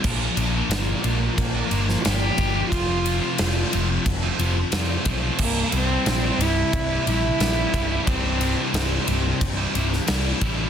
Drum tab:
CC |x---------------|----------------|x---------------|----------------|
RD |--x-x-x-x-x-x-x-|x-x-x-x-x-x-x-x-|--x-x-x-x-x-x-x-|x-x-x-x-x-x-x-x-|
SD |----o------oo---|----o-------o---|----o-------o---|----o------oo---|
BD |o-------o-----o-|o-------o-----o-|o-------o-----o-|o-------o-----o-|